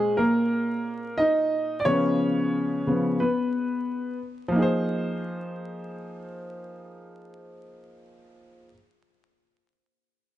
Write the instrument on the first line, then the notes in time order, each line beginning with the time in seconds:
grand piano
Already playing: A#2 G#3 G#4
0.17 A#3 A#4
1.18 D#4 D#5
1.80 D5
1.85 C#3 F3 B3 C#4 C#5
2.87 C#3 F3 B3
3.20 B3 B4
4.48 F3 A#3
4.55 D#4 G#4
4.62 C5